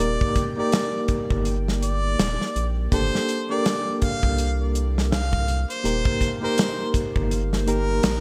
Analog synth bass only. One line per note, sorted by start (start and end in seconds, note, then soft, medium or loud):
0.00 0.18 D#1 medium
1.31 2.16 G1 loud
2.19 2.38 D#1 medium
2.56 2.88 A#1 loud
2.92 3.11 G1 loud
4.23 5.65 C2 loud
5.84 6.03 D#1 medium
7.16 7.67 G1 loud
7.68 8.00 G1 loud
8.04 8.20 A#1 loud